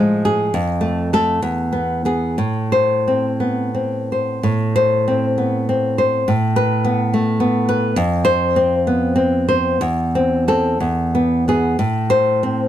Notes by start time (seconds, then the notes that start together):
Already playing: A2 F3 G#3
0.25 G#4
0.54 F2
0.81 A3
1.13 A3 A4
1.42 E2
1.73 B3
2.05 B3 G#4
2.38 A2
2.72 C5
3.08 C4
3.40 B3
3.75 C4
4.12 C5
4.43 A2
4.76 C5
5.08 C4
5.38 B3
5.69 C4
5.98 C5
6.28 A2
6.56 B4
6.85 B3
7.14 A3
7.40 B3
7.69 B4
7.96 F2
8.25 C5
8.56 C4
8.87 B3
9.16 C4
9.49 C5
9.81 E2
10.15 C4
10.48 C4 A4
10.80 E2
11.15 B3
11.48 B3 G#4
11.79 A2
12.10 C5
12.43 C4